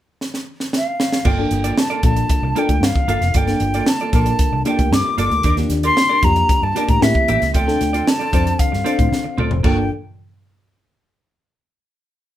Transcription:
0.21 snare
0.34 snare
0.60 snare
0.73 F5, snare
1.00 snare
1.12 snare
1.25 G1 A#3 F4 A4 D5 G5, kick, crash
1.39 A#3 D4 F4 A4, muted clean electric guitar stroke
1.51 G1, muted clean electric guitar stroke, closed hi-hat
1.64 A#3 F4 A4 D5, closed hi-hat
1.78 A5, muted clean electric guitar stroke, snare
1.90 A#3 F4 A4 D5, closed hi-hat
2.03 A#1 A#3 D4 F4 A4 A5, muted clean electric guitar stroke, kick, closed hi-hat
2.16 muted clean electric guitar stroke, closed hi-hat
2.29 muted clean electric guitar stroke, kick, closed hi-hat
2.42 C2, muted clean electric guitar stroke
2.56 A#3 D4 F4 A4 D5 G5, closed hi-hat
2.69 D2, muted clean electric guitar stroke, kick, closed hi-hat
2.81 G2, snare
2.85 F5
2.95 muted clean electric guitar stroke, kick
3.08 G1 A#3 F4 A4 F5, closed hi-hat
3.21 F1, muted clean electric guitar stroke, snare, closed hi-hat
3.34 G1 A#3 F4 A4 D5 G5, kick, closed hi-hat
3.47 A#3 D4 F4 A4, snare, closed hi-hat
3.60 G1, muted clean electric guitar stroke, closed hi-hat
3.74 A#3 F4 A4 D5, closed hi-hat
3.86 A5, muted clean electric guitar stroke, snare
4.00 A#3 F4 A4 D5, closed hi-hat
4.13 A#1 A#3 D4 F4 A4 A#4 D5 A5, kick, closed hi-hat
4.26 muted clean electric guitar stroke, closed hi-hat
4.39 kick, closed hi-hat
4.52 C2, muted clean electric guitar stroke
4.65 A#3 D4 F4 G4 A4 D5 G5, closed hi-hat
4.79 D2, muted clean electric guitar stroke, kick, closed hi-hat
4.91 G2 D6, snare
5.05 muted clean electric guitar stroke
5.18 G1 A#3 F4 A4 D5 D6, closed hi-hat
5.31 D2, muted clean electric guitar stroke, closed hi-hat
5.43 D#2 D4 G4 A#4 D5, kick, closed hi-hat
5.57 A#3 D4 F4 G4, muted clean electric guitar stroke, snare, closed hi-hat
5.69 D#2, muted clean electric guitar stroke, snare, closed hi-hat
5.83 D4 G4 A#4 D5 C6, closed hi-hat
5.97 muted clean electric guitar stroke, snare
6.09 D4 G4 A#4 D5
6.23 F2 A#3 D4 F4 G4 A#5, muted clean electric guitar stroke, kick, closed hi-hat
6.36 muted clean electric guitar stroke, closed hi-hat
6.49 muted clean electric guitar stroke, kick, closed hi-hat
6.62 G2 A5, muted clean electric guitar stroke
6.75 A#3 D4 F4 G4 A#4 D5, closed hi-hat
6.88 A2 A#5, muted clean electric guitar stroke, kick, closed hi-hat
7.01 A2 A#3 C#4 E4 G4 E5, snare
7.15 muted clean electric guitar stroke, kick
7.28 A1 A#3 E4 G4 E5, closed hi-hat
7.42 C#2, muted clean electric guitar stroke, snare, closed hi-hat
7.54 D2 C4 F4 A4 D5 G5, kick, closed hi-hat
7.67 C4 D4 F4 A4, snare
7.80 D2, muted clean electric guitar stroke, snare, closed hi-hat
7.93 C4 F4 A4 D5, closed hi-hat
8.07 A5, muted clean electric guitar stroke, snare
8.19 C4 F4 A4 D5, closed hi-hat
8.33 F2 C4 D4 F4 A4 C5 D5, kick, closed hi-hat
8.47 muted clean electric guitar stroke, closed hi-hat
8.59 F5, kick, closed hi-hat
8.72 G2, muted clean electric guitar stroke, snare
8.84 C4 D4 F4 A4 C5 D5, closed hi-hat
8.98 A2, muted clean electric guitar stroke, kick, closed hi-hat
9.12 D3, snare
9.24 muted clean electric guitar stroke
9.38 D2 C4 F4 A4 D5, mid tom
9.51 F1, muted clean electric guitar stroke, floor tom
9.63 G1 A#3 D4 F4 A4 D5 G5, kick, china

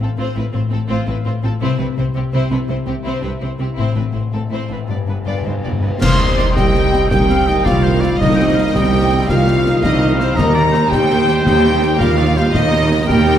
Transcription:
Already playing: A2 C4 C5
0.00 A1 A2 C4 A4 F5
0.18 A1 A2 C4 F4 C5
0.35 A1 A2 C4 E4 F4 B4
0.52 A1 A2 C4 F4 C5
0.70 A1 A2 C4 A4
0.88 A1 A2 C4 F4 C5
1.06 A1 A2 C4 E4 B4 F5
1.25 A1 A2 C4 F4 C5
1.42 A1 A2 C4 F4 A4
1.61 C2 C3 C4 E4 C5
1.78 C2 C3 C4 D4 B4
1.98 C2 C3 C4 E4 C5
2.15 C2 C3 C4 G4 E5
2.33 C2 C3 C4 E4 C5
2.51 C2 C3 C4 D4 E4 B4
2.68 C2 C3 G3 C4 E4 C5
2.87 C2 C3 C4 G4
3.04 C2 C3 C4 E4 C5
3.21 C2 C3 C4 D4 B4 E5
3.40 C2 C3 C4 E4 C5
3.59 C2 C3 C4 E4 G4
3.75 A1 A2 C4 E4
3.80 C5
3.95 A1 A2 C4 D4 B4
4.14 A1 A2 C4 E4 C5
4.32 A1 A2 C4 A4 E5
4.50 A1 A2 C4 E4 C5
4.69 A1 A2 C4 D4 E4 B4
4.88 G1 G2 B3 F4 D5
4.97 G2
5.05 G1 G2 B3 D4
5.10 G2 B4
5.19 G2
5.25 G1 G2 B3 F4 B4 D5
5.34 G2
5.41 G2 D#4 F5
5.46 G1 G2 B3 C5
5.57 G2
5.63 G1 G2 B3 F4 D5
5.72 G2
5.80 G1 G2 B3 D4 B4
5.88 G2
6.01 C2 C3 D#3 D#4 C5 F5 C6, concert bass drum, snare, crash
6.11 G3
6.19 G3 C4 D#4 D#5
6.29 G4
6.37 D#3 D#4 D5 D#5, snare
6.46 G4
6.55 C2 G3 C4 G4 D#5 G5, concert bass drum, snare
6.65 D#6
6.74 D#3 D#4 G5, snare
6.84 D#6
6.91 G3 C4 G5, snare
7.10 C2 D#3 D#4 G4 G5, concert bass drum, snare
7.20 D#5
7.29 G3 C4 G4 F5, snare
7.38 G3
7.47 D#3 D#4 D#5, snare
7.57 G3
7.64 C2 G3 C4 D#4 F4 D5 F5, concert bass drum, snare
7.75 G3
7.83 D#3 D#4 C5
7.94 G3
8.00 G3 C4 D#4 D5, snare
8.12 G3
8.19 C2 C3 D#3 D#4 D#5, concert bass drum, snare
8.36 G3 G5
8.40 C4
8.49 G4
8.54 F5
8.58 D#3 D#4 D#5
8.67 G4
8.73 C2 G3 C4 G4 D#5 G5, concert bass drum, snare
8.85 D#6
8.93 D#3 D#4 G5
9.13 G3 C4
9.20 D#6
9.29 C2 D#3 D#4 F4 F5 G5, concert bass drum, snare
9.38 D#5
9.47 G3 C4 G4, snare
9.57 G3
9.66 D#3 D#4, snare
9.76 G3
9.83 C2 G3 C4 D#4 D#5, concert bass drum, snare
9.93 G3
10.00 D#3 D#4
10.11 G3
10.18 G3 C4 D#4 C5, snare
10.29 G3
10.37 D#2 D#3 A#3 D#4 A#4 D#5 A#5, concert bass drum, snare, crash
10.48 D#4
10.54 G3 A#3 G4 D5
10.66 G4
10.72 A#3 D#4 C5 D#5, snare
10.83 A#4
10.90 D#2 G3 G4 G5, concert bass drum, snare
11.02 D#6
11.09 A#3 D#4 G5, snare
11.20 D#6
11.27 G3 G4 G5, snare
11.37 D#6
11.45 D#2 A#3 D#4 G4 G5, concert bass drum, snare
11.56 D#5
11.63 G3 G4, snare
11.74 D#4
11.81 A#3 D#4, snare
11.93 D#4
11.98 D#2 G3 A#3 F4 G4 A#4 F5, concert bass drum, snare
12.10 D#4
12.16 A#3 D#4 D5
12.28 D#4
12.35 G3 A#3 G4 C5, snare
12.46 D#4
12.53 D#2 D#3 A#3 D#4 D#5, concert bass drum, snare
12.64 A#3
12.70 G3 D#4 G4
12.82 G4
12.88 A#3 D#4
13.00 A#4
13.07 D#2 G3 G4 A#4 G5, concert bass drum, snare
13.18 D#6
13.25 A#3 D#4
13.35 D#6

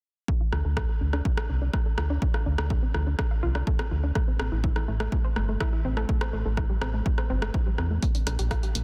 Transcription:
0.28 D4, kick
0.41 F4
0.53 D2 F4, cross-stick
0.65 D2 A4
0.77 A4, kick, cross-stick
0.89 A4
1.01 D2 D4
1.13 D4, cross-stick
1.25 D4, kick
1.37 F5, cross-stick
1.49 C2 D4
1.62 D4
1.74 A4, kick, cross-stick
1.86 A4
1.98 D2 F4, cross-stick
2.10 D4
2.22 D4, kick
2.34 F5, cross-stick
2.46 D2 D4
2.58 D2 D4, cross-stick
2.70 A4, kick
2.83 C4
2.94 D2 F4, cross-stick
3.07 D4
3.19 D4, kick, cross-stick
3.31 F5
3.43 C2 F4
3.55 D4, cross-stick
3.67 A4, kick
3.79 C4, cross-stick
3.91 D2 F4
4.04 D4
4.15 A3, kick, cross-stick
4.28 C4
4.40 A1 C4, cross-stick
4.52 A1 E4
4.64 E4, kick
4.76 E4, cross-stick
4.88 A1 A3
5.00 A3, cross-stick
5.12 A3, kick
5.24 C5
5.36 G1 A3, cross-stick
5.49 A3
5.60 E4, kick, cross-stick
5.73 E4
5.85 A1 C4
5.97 A3, cross-stick
6.09 A3, kick
6.21 C5, cross-stick
6.33 A1 A3
6.45 A1 A3
6.57 E4, kick, cross-stick
6.70 G3
6.82 A1 C4, cross-stick
6.94 A3
7.06 A3, kick
7.18 C5, cross-stick
7.30 G1 C4
7.42 A3, cross-stick
7.54 E4, kick
7.66 G3
7.78 E2 C4, cross-stick
7.91 A3
8.03 A#3, kick, closed hi-hat
8.15 D4, closed hi-hat
8.27 A#1 D4, cross-stick, closed hi-hat
8.39 A#1 G4, closed hi-hat
8.51 F4, kick, cross-stick, closed hi-hat
8.63 G4, closed hi-hat
8.75 A#1 A#3, closed hi-hat

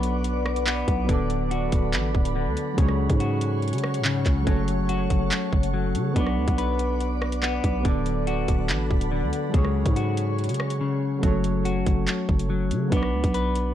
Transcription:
Already playing: B1 F#3 B3 D4 B4 D5 F#5 D6
0.03 closed hi-hat
0.24 closed hi-hat
0.46 cross-stick
0.56 closed hi-hat
0.67 B3, clap
0.88 B1, kick, closed hi-hat
1.05 F#3 B3
1.09 D1 D3 D4 A4 F#5 B5, kick, closed hi-hat
1.13 D5
1.30 closed hi-hat
1.51 F#4, closed hi-hat
1.72 D1, kick, closed hi-hat
1.93 A1, clap, closed hi-hat
2.15 D1, kick
2.25 closed hi-hat
2.36 D3
2.46 D2
2.57 closed hi-hat
2.73 F#3 G#3
2.78 C#2 C#3 C#4 G#4 C#5 C#6, kick, closed hi-hat
2.82 C#5
2.88 cross-stick
3.10 G#2, kick, closed hi-hat
3.20 F#4, closed hi-hat
3.41 closed hi-hat
3.62 closed hi-hat
3.68 closed hi-hat
3.73 C#3, closed hi-hat
3.78 closed hi-hat
3.84 cross-stick
3.94 closed hi-hat
3.99 G#2
4.05 C#3, clap
4.26 C#2, kick, clap, closed hi-hat
4.42 F#3 A3
4.47 F#1 F#3 C#4 A4, kick, closed hi-hat
4.51 C#5
4.68 closed hi-hat
4.89 F#4, closed hi-hat
5.10 F#1, kick, closed hi-hat
5.31 clap, closed hi-hat
5.53 F#1, kick
5.63 closed hi-hat
5.74 F#3
5.95 C#3, closed hi-hat
6.12 F#3 B3
6.16 B1 B3 D4 B4 D5 D6, kick, closed hi-hat
6.20 D5
6.27 cross-stick
6.37 D2
6.48 B1, kick, closed hi-hat
6.58 B4, closed hi-hat
6.79 closed hi-hat
7.00 closed hi-hat
7.22 cross-stick
7.32 closed hi-hat
7.43 B3, clap
7.64 B1, kick, closed hi-hat
7.80 F#3 B3
7.85 D1 D3 D4 A4 F#5 B5, kick, closed hi-hat
7.89 D5
8.06 closed hi-hat
8.27 F#4, closed hi-hat
8.48 D1, kick, closed hi-hat
8.69 A1, clap, closed hi-hat
8.91 D1, kick
9.01 closed hi-hat
9.12 D3
9.22 D2
9.33 closed hi-hat
9.49 F#3 G#3
9.54 C#2 C#3 C#4 G#4 C#5 C#6, kick, closed hi-hat
9.58 C#5
9.65 cross-stick
9.86 G#2, kick, closed hi-hat
9.96 F#4, closed hi-hat
10.17 closed hi-hat
10.38 closed hi-hat
10.44 closed hi-hat
10.49 C#3, closed hi-hat
10.54 closed hi-hat
10.60 cross-stick
10.70 closed hi-hat
10.81 C#3
11.19 F#3 A3
11.23 F#1 F#3 C#4 A4, kick, closed hi-hat
11.28 C#5
11.44 closed hi-hat
11.65 F#4, closed hi-hat
11.86 F#1, kick, closed hi-hat
12.08 clap, closed hi-hat
12.29 F#1, kick
12.39 closed hi-hat
12.50 F#3
12.71 C#3, closed hi-hat
12.88 F#3 B3
12.92 B1 B3 D4 B4, kick, closed hi-hat
12.97 D5
13.03 cross-stick
13.13 D2
13.24 B1, kick, closed hi-hat
13.34 B4, closed hi-hat
13.55 closed hi-hat

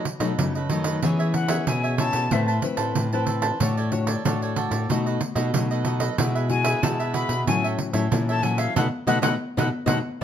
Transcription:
Already playing: B2
0.05 muted cavaquinho stroke, pandeiro
0.20 B2 F#3 A3 D#4 A4 B4 D#5, pandeiro
0.38 F#2 C#3 F#3 A3 D#4, pandeiro
0.55 A4 B4 D#5, pandeiro
0.69 D#3 F#3 A3 D#4 A4 B4 D#5, pandeiro
0.84 A4 B4 D#5, pandeiro
1.02 E3 B3 C#4 E4 G#4 C#5 E5, pandeiro
1.19 G#4 C#5 E5, pandeiro
1.34 F#5, muted cavaquinho stroke, pandeiro
1.48 B3 C#4 G#4 C#5 E5, pandeiro
1.67 B2 E4 G#4 C#5 E5 G#5, pandeiro
1.83 G#4 C#5 E5, pandeiro
1.98 B3 C#4 E4 G#4 C#5 E5 A5, pandeiro
2.13 B2, pandeiro
2.31 A2 A3 C4 E4 A4 B4 C5 E5 A5, pandeiro
2.48 B4 C5 A5, pandeiro
2.62 C4 E4 B4, muted cavaquinho stroke, pandeiro
2.77 A2 B4 C5 A5, pandeiro
2.95 A2 E3, pandeiro
3.12 C4 E4 B4 C5 A5, pandeiro
3.27 A4 B4 C5 A5, pandeiro
3.42 B4 C5 A5, pandeiro
3.60 A2 A3 D4 F#4 A4 C#5 D5, pandeiro
3.77 A4 C#5 D5, pandeiro
3.92 D4 F#4 C#5, muted cavaquinho stroke, pandeiro
4.07 A4 C#5 D5, pandeiro
4.25 A2 A3 D4 F#4 A4 C#5 D5, pandeiro
4.42 A4 C#5 D5, pandeiro
4.56 F#4 A4 C#5 D5, pandeiro
4.71 A2, pandeiro
4.89 B2 A3 D#4 F#4 A4 B4 D#5, pandeiro
5.06 A4 B4 D#5, pandeiro
5.21 muted cavaquinho stroke, pandeiro
5.35 B2 A3 D#4 F#4 A4 B4 D#5, pandeiro
5.54 B2 F#3 A3 D#4 F#4, pandeiro
5.71 A4 B4 D#5, pandeiro
5.85 A3 D#4 F#4 A4 B4 D#5, pandeiro
6.00 A4 B4 D#5, pandeiro
6.18 B2 G#3 E4 F#4 G#4 B4 E5, pandeiro
6.35 G#4 B4 E5, pandeiro
6.49 G#3 E4 F#4 G#5, muted cavaquinho stroke, pandeiro
6.64 G#4 B4 E5, pandeiro
6.82 B2 G#3 E4 F#4 G#4 B4 E5 A5, pandeiro
7.00 G#4 B4 E5, pandeiro
7.14 F#4 G#4 B4 E5 B5, pandeiro
7.29 B2, pandeiro
7.47 A2 F#3 C#4 E4 F#4 A4 C#5 E5 G#5, pandeiro
7.64 A4 C#5 E5, pandeiro
7.79 muted cavaquinho stroke, pandeiro
7.93 A2 F#3 C#4 E4 A4 C#5 E5, pandeiro
8.11 A#2 E3 F#3 C#4 E4, pandeiro
8.29 A4 C#5 E5 A5, pandeiro
8.43 F#3 C#4 E4 F#4 A4 C#5 E5 G#5, pandeiro
8.58 A4 C#5 E5 F5, pandeiro
8.76 B2 A3 B3 D#4 A4 B4 D#5 F#5, pandeiro
9.07 B2 A3 B3 D#4 A4 B4 D#5 F#5, pandeiro
9.22 B2 A3 B3 D#4 A4 B4 D#5 F#5, pandeiro
9.57 B2 A3 B3 D#4 A4 B4 D#5 F#5, pandeiro
9.86 B2 A3 B3 D#4 A4 B4 D#5 F#5, pandeiro

